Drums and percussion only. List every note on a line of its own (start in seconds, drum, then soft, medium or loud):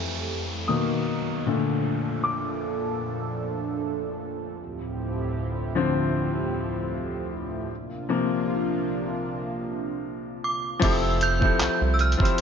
10.82 kick loud
10.82 closed hi-hat medium
10.82 crash loud
11.21 closed hi-hat medium
11.42 kick loud
11.60 clap loud
11.60 closed hi-hat medium
11.99 closed hi-hat medium
12.12 closed hi-hat medium
12.20 kick loud
12.25 closed hi-hat medium